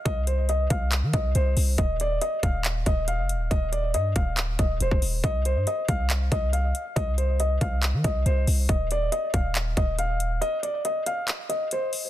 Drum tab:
HH |x-x-x-x-x-x-x-o-|x-x-x-x-x-x-x-x-|x-x-x-x-x-x-x-o-|x-x-x-x-x-x-x-x-|
CP |--------x-------|--------x-------|--------x-------|--------x-------|
BD |o-----o---o-----|o-----o---o-----|o-----o---o--o--|o-----o---o-----|

HH |x-x-x-x-x-x-x-o-|x-x-x-x-x-x-x-x-|x-x-x-x-x-x-x-o-|
CP |--------x-------|--------x-------|--------x-------|
BD |o-----o---o-----|o-----o---o-----|----------------|